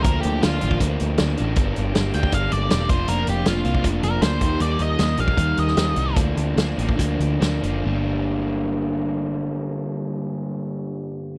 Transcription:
<<
  \new Staff \with { instrumentName = "Lead electric guitar" } { \time 4/4 \key g \minor \tempo 4 = 155 bes'8 g'8 f'4 r2 | r4. g''8 f''8 d''8 d''8 c''8 | bes'8 g'8 f'4 r8 bes'8 c''4 | d''8 ees''4 f''4 ees''4. |
r1 | r1 | r1 | }
  \new Staff \with { instrumentName = "Overdriven electric guitar" } { \time 4/4 \key g \minor <d f bes d'>4 <d f bes d'>8 <d f bes d'>8 <d f bes d'>4 <d f bes d'>8 <d f bes d'>8 | <g, d g bes d'>4 <g, d g bes d'>8 <g, d g bes d'>8 <g, d g bes d'>4 <g, d g bes d'>8 <f bes d' f'>8 | <f bes d' f'>4 <f bes d' f'>8 <f bes d' f'>8 <f bes d' f'>4 <f bes d' f'>8 <ees g bes ees'>8 | <ees g bes ees'>4 <ees g bes ees'>8 <ees g bes ees'>8 <ees g bes ees'>4 <ees g bes ees'>8 <ees g bes ees'>8 |
<d f bes d'>4 <d f bes d'>8 <d f bes d'>8 <d f bes d'>4 <d f bes d'>8 <d f bes d'>8 | <g, d g bes d'>1~ | <g, d g bes d'>1 | }
  \new Staff \with { instrumentName = "Picked electric bass" } { \clef bass \time 4/4 \key g \minor d,8 d,8 d,8 a,,8 d,8 d,8 d,8 a,,8 | g,,8 g,,8 g,,8 d,8 g,,8 g,,8 e,,8 f,,8 | f,,8 f,,8 f,,8 c,8 f,,8 f,,8 d,8 ees,8 | ees,8 ees,8 ees,8 bes,,8 ees,8 ees,8 ees,8 c,8 |
d,8 d,8 d,8 a,,8 d,8 d,8 d,8 fis,,8 | g,,1~ | g,,1 | }
  \new DrumStaff \with { instrumentName = "Drums" } \drummode { \time 4/4 <hh bd>8 hh8 <hh sn>8 hh16 bd16 <hh bd>8 hh8 <hh sn>8 hh8 | <hh bd>8 hh8 <hh sn>8 hh16 bd16 <hh bd>8 hh8 <hh sn>8 <hh bd>8 | hh8 hh8 <hh sn>8 hh16 bd16 <hh bd>8 hh8 <hh sn>8 <hh bd>8 | hh8 hh8 <hh sn>8 hh16 bd16 <hh bd>8 hh16 sn16 <hh sn>8 hh8 |
<hh bd>8 hh8 <hh sn>8 hh16 bd16 <hh bd>8 hh8 <hh sn>8 hh8 | r4 r4 r4 r4 | r4 r4 r4 r4 | }
>>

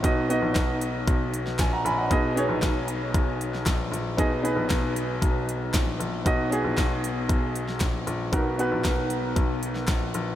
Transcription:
<<
  \new Staff \with { instrumentName = "Upright piano" } { \time 4/4 \key b \major \tempo 4 = 116 << { r2. gis''16 <fis'' ais''>16 <gis'' b''>16 <dis'' fis''>16~ | <dis'' fis''>16 r2. r8. | r1 | r1 |
r1 | } \\ { <b dis' fis' dis''>8 <b dis' fis' dis''>4. r2 | <b dis' gis' dis''>8 <b dis' gis' cis''>4. r2 | <b dis' gis' dis''>8 <b dis' gis' b'>4. r2 | <b dis' fis' dis''>8 <b dis' fis' gis'>4. r2 |
<b dis' fis' ais'>8 <b dis' fis' b'>4. r2 | } >> }
  \new Staff \with { instrumentName = "Upright piano" } { \clef bass \time 4/4 \key b \major r1 | b,4. r2 r8 | b,4. r2 r8 | r1 |
r1 | }
  \new Staff \with { instrumentName = "Grand piano" } { \clef bass \time 4/4 \key b \major b,,8. ais,,16 b,,4 b,,4 ais,,8 ais,,8 | b,,8. ais,,16 b,,4 b,,4 ais,,8 ais,,8 | b,,8. ais,,16 b,,4 b,,4 ais,,8 ais,,8 | b,,8. ais,,16 b,,4 b,,4 ais,,8 ais,,8 |
b,,8. ais,,16 b,,4 b,,4 ais,,8 ais,,8 | }
  \new DrumStaff \with { instrumentName = "Drums" } \drummode { \time 4/4 <hh bd>8 hh8 <hc hh bd sn>8 hh8 <hh bd>8 hh16 sn16 <hc hh bd sn>8 hh8 | <hh bd>8 hh8 <hc hh bd sn>8 hh8 <hh bd>8 hh16 sn16 <hc hh bd sn>8 hh8 | <hh bd>8 hh8 <hc hh bd sn>8 hh8 <hh bd>8 hh8 <hc hh bd sn>8 hh8 | <hh bd>8 hh8 <hc hh bd sn>8 hh8 <hh bd>8 hh16 sn16 <hc hh bd sn>8 hh8 |
<hh bd>8 hh8 <hc hh bd sn>8 hh8 <hh bd>8 hh16 sn16 <hc hh bd sn>8 hh8 | }
>>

